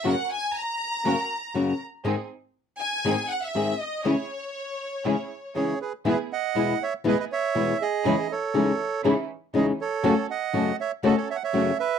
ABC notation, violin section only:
X:1
M:4/4
L:1/16
Q:1/4=120
K:C#m
V:1 name="Violin section"
f2 g2 ^a8- a2 z2 | z6 g4 f e3 d2 | c12 z4 | [K:E] z16 |
z16 | z16 |]